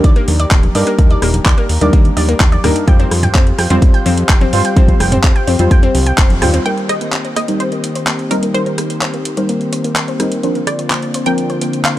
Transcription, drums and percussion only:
0.04 kick loud
0.04 closed hi-hat soft
0.16 closed hi-hat soft
0.28 open hi-hat loud
0.28 high conga medium
0.40 closed hi-hat soft
0.51 kick loud
0.51 clap loud
0.51 closed hi-hat soft
0.63 closed hi-hat soft
0.63 high conga medium
0.75 open hi-hat loud
0.87 closed hi-hat soft
0.99 kick loud
0.99 closed hi-hat soft
0.99 high conga medium
1.10 closed hi-hat soft
1.22 cross-stick medium
1.22 open hi-hat loud
1.34 closed hi-hat soft
1.34 high conga medium
1.46 kick loud
1.46 clap loud
1.46 closed hi-hat soft
1.58 closed hi-hat soft
1.69 open hi-hat loud
1.81 closed hi-hat medium
1.81 high conga medium
1.93 kick loud
1.93 closed hi-hat medium
2.05 closed hi-hat soft
2.17 open hi-hat loud
2.17 high conga medium
2.29 closed hi-hat soft
2.40 kick loud
2.40 clap loud
2.40 closed hi-hat medium
2.52 closed hi-hat soft
2.52 high conga medium
2.64 cross-stick medium
2.64 mid tom medium
2.64 open hi-hat loud
2.76 closed hi-hat soft
2.88 kick loud
2.88 closed hi-hat soft
2.88 high conga medium
3.00 closed hi-hat soft
3.11 cross-stick medium
3.11 open hi-hat loud
3.23 closed hi-hat medium
3.23 mid tom medium
3.23 high conga medium
3.35 kick loud
3.35 clap loud
3.35 closed hi-hat medium
3.47 closed hi-hat soft
3.59 cross-stick medium
3.59 open hi-hat loud
3.70 closed hi-hat medium
3.70 high conga medium
3.82 kick loud
3.82 closed hi-hat medium
3.94 closed hi-hat soft
4.06 open hi-hat medium
4.06 high conga medium
4.18 closed hi-hat medium
4.29 kick loud
4.29 clap loud
4.29 closed hi-hat medium
4.41 closed hi-hat soft
4.41 high conga loud
4.53 open hi-hat loud
4.65 closed hi-hat medium
4.76 kick loud
4.76 closed hi-hat medium
4.76 high conga medium
4.88 kick medium
4.88 closed hi-hat soft
5.00 cross-stick medium
5.00 open hi-hat loud
5.12 closed hi-hat medium
5.12 mid tom medium
5.12 high conga medium
5.24 kick loud
5.24 clap loud
5.24 closed hi-hat medium
5.36 closed hi-hat soft
5.47 open hi-hat loud
5.59 closed hi-hat medium
5.59 high conga medium
5.71 kick loud
5.71 closed hi-hat medium
5.83 closed hi-hat soft
5.95 open hi-hat medium
5.95 high conga medium
6.06 closed hi-hat medium
6.18 kick loud
6.18 clap loud
6.18 closed hi-hat medium
6.30 closed hi-hat soft
6.30 high conga loud
6.42 cross-stick medium
6.42 mid tom medium
6.42 open hi-hat loud
6.54 closed hi-hat medium
6.66 closed hi-hat soft
6.78 closed hi-hat soft
6.89 cross-stick medium
6.89 closed hi-hat medium
7.01 closed hi-hat soft
7.13 clap loud
7.13 closed hi-hat soft
7.25 closed hi-hat soft
7.36 cross-stick medium
7.36 closed hi-hat medium
7.48 closed hi-hat soft
7.60 closed hi-hat soft
7.72 closed hi-hat soft
7.84 closed hi-hat medium
7.95 closed hi-hat medium
8.07 clap loud
8.07 closed hi-hat soft
8.19 closed hi-hat soft
8.31 closed hi-hat medium
8.43 closed hi-hat medium
8.55 closed hi-hat soft
8.66 closed hi-hat soft
8.78 cross-stick medium
8.78 closed hi-hat medium
8.90 closed hi-hat soft
9.02 clap loud
9.02 closed hi-hat soft
9.14 closed hi-hat soft
9.25 closed hi-hat medium
9.37 closed hi-hat soft
9.49 closed hi-hat medium
9.61 closed hi-hat soft
9.73 closed hi-hat medium
9.84 closed hi-hat soft
9.96 clap loud
9.96 closed hi-hat soft
10.08 closed hi-hat soft
10.20 cross-stick medium
10.20 closed hi-hat medium
10.32 closed hi-hat soft
10.43 closed hi-hat soft
10.55 closed hi-hat soft
10.67 cross-stick medium
10.67 closed hi-hat medium
10.79 closed hi-hat soft
10.90 clap loud
10.90 closed hi-hat soft
11.02 closed hi-hat soft
11.14 closed hi-hat medium
11.26 closed hi-hat soft
11.38 closed hi-hat soft
11.50 closed hi-hat soft
11.61 closed hi-hat medium
11.73 closed hi-hat soft
11.85 clap loud
11.85 closed hi-hat soft

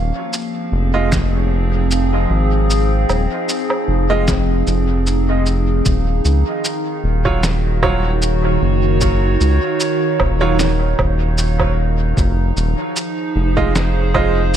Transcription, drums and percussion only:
0.33 cabasa medium
1.12 kick loud
1.12 snare medium
1.12 cabasa soft
1.91 cabasa soft
2.70 cabasa soft
3.10 cabasa soft
3.10 low woodblock medium
3.49 cabasa medium
3.70 low woodblock medium
4.28 kick loud
4.28 snare medium
4.28 cabasa medium
4.67 cabasa soft
5.07 cabasa medium
5.46 cabasa soft
5.86 kick loud
5.86 cabasa medium
6.25 cabasa soft
6.65 cabasa medium
7.26 kick medium
7.43 snare medium
7.43 cabasa medium
7.83 kick loud
7.83 low woodblock medium
8.22 cabasa medium
9.01 kick loud
9.01 cabasa medium
9.41 cabasa soft
9.80 cabasa medium
10.20 kick loud
10.20 low woodblock medium
10.59 snare medium
10.59 cabasa medium
10.99 kick loud
10.99 low woodblock medium
11.38 cabasa medium
11.60 kick medium
11.60 low woodblock medium
12.17 kick loud
12.17 cabasa medium
12.57 cabasa soft
12.96 cabasa medium
13.57 kick medium
13.76 snare medium
13.76 cabasa medium
14.15 kick loud
14.15 low woodblock medium

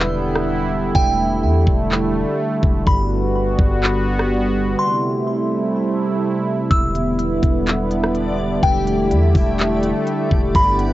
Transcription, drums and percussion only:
0.00 clap loud
0.35 cross-stick loud
0.95 kick loud
1.67 kick loud
1.92 clap loud
2.63 kick loud
2.87 kick loud
3.59 kick loud
3.84 clap loud
4.19 cross-stick loud
6.71 kick loud
6.71 closed hi-hat medium
6.95 closed hi-hat medium
7.19 closed hi-hat medium
7.43 kick loud
7.43 closed hi-hat medium
7.67 clap loud
7.67 closed hi-hat medium
7.91 closed hi-hat medium
8.03 cross-stick loud
8.15 closed hi-hat medium
8.63 kick loud
8.63 closed hi-hat medium
8.87 closed hi-hat medium
9.11 closed hi-hat medium
9.35 kick loud
9.35 open hi-hat medium
9.59 clap loud
9.59 closed hi-hat medium
9.83 closed hi-hat medium
10.07 closed hi-hat medium
10.31 kick loud
10.55 kick loud
10.55 closed hi-hat medium
10.79 closed hi-hat medium

